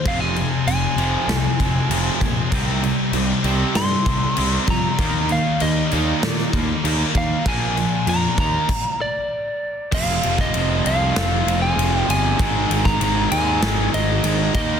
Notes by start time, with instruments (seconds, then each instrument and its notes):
0.05 picked electric bass F1, distorted electric guitar F2 C3 F3 G#3 C4, lead electric guitar F5, kick, crash
0.20 lead electric guitar G#5
0.36 distorted electric guitar F2 C3, crash
0.66 picked electric bass F1, distorted electric guitar F2 C3, lead electric guitar G#5, crash
0.96 picked electric bass F1, distorted electric guitar F2 C3 F3, crash
1.28 picked electric bass C2, distorted electric guitar F2 C3, snare, crash
1.59 picked electric bass F1, distorted electric guitar F2 C3 F3 G#3 C4, kick, crash
1.89 picked electric bass F1, distorted electric guitar F2 C3 F3 G#3 C4, crash
2.21 picked electric bass A#1, distorted electric guitar F2 C3, kick, crash
2.52 picked electric bass C2, distorted electric guitar C3 G3 C4 D#4, kick, crash
2.83 distorted electric guitar C3 G3, crash
3.12 picked electric bass C2, distorted electric guitar C3 G3, crash
3.44 picked electric bass C2, distorted electric guitar C3 G3 C4, crash
3.75 picked electric bass G2, distorted electric guitar C3 G3, lead electric guitar C6, snare, crash
4.05 picked electric bass C2, distorted electric guitar C3 G3 C4 D#4, kick, crash
4.37 picked electric bass C2, distorted electric guitar C3 G3 C4 D#4, crash
4.67 picked electric bass F2, distorted electric guitar C3 G3, lead electric guitar A#5, kick, crash
4.98 picked electric bass D#2, distorted electric guitar D#3 G3 A#3 D#4, kick, crash
5.29 distorted electric guitar D#3 A#3, lead electric guitar F5, crash
5.60 picked electric bass D#2, distorted electric guitar D#3 A#3, lead electric guitar D#5, crash
5.91 picked electric bass D#2, distorted electric guitar D#3 A#3 D#4, crash
6.23 picked electric bass A#2, distorted electric guitar D#3 A#3, snare, crash
6.38 snare
6.53 picked electric bass D#2, distorted electric guitar D#3 G3 A#3 D#4, kick, crash
6.84 picked electric bass D#2, distorted electric guitar D#3 G3 A#3 D#4, crash
7.14 picked electric bass D#2, distorted electric guitar D#3 A#3, lead electric guitar F5, kick, crash
7.46 picked electric bass A#1, distorted electric guitar A#2 D3 F3 A#3 D4, lead electric guitar G#5, kick, crash
7.77 distorted electric guitar A#2 F3, crash
8.07 picked electric bass F2, distorted electric guitar A#2 F3, lead electric guitar A#5, crash
8.37 picked electric bass D#2, distorted electric guitar D#3 A#3 D#4, lead electric guitar A#5, kick, crash
8.69 kick, crash
9.01 lead electric guitar D5
9.92 picked electric bass F1, distorted electric guitar F2 C3 F3 G#3 C4 F4, lead electric guitar F5, kick, crash
10.22 picked electric bass F1, distorted electric guitar F2 C3 F3, ride
10.38 lead electric guitar D#5, kick, snare
10.53 picked electric bass F1, distorted electric guitar F2 C3 F3, ride
10.84 picked electric bass C2, distorted electric guitar F2 C3 F3, lead electric guitar F5, ride
11.15 picked electric bass F1, distorted electric guitar F2 C3 F3, snare, ride
11.46 picked electric bass F1, distorted electric guitar F2 C3 F3, ride
11.62 lead electric guitar G#5
11.77 picked electric bass F1, distorted electric guitar F2 C3 F3, ride
11.98 lead electric guitar G5
12.08 picked electric bass G1, distorted electric guitar F2 C3 F3, lead electric guitar G#5, ride
12.39 picked electric bass G#1, distorted electric guitar G#2 D#3 G#3 C4 D#4, kick, ride
12.69 picked electric bass G#1, distorted electric guitar G#2 D#3 G#3, ride
12.85 lead electric guitar A#5, kick, snare
13.00 picked electric bass G#1, distorted electric guitar G#2 D#3 G#3, ride
13.32 picked electric bass D#2, distorted electric guitar G#2 D#3 G#3, lead electric guitar G#5, ride
13.62 picked electric bass G#1, distorted electric guitar G#2 D#3 G#3, snare, ride
13.92 picked electric bass G#1, distorted electric guitar G#2 D#3 G#3, lead electric guitar D#5, ride
14.24 picked electric bass G#1, distorted electric guitar G#2 D#3 G#3, ride
14.55 picked electric bass D#2, distorted electric guitar D#3 G3 A#3 D#4, lead electric guitar D#5, kick, ride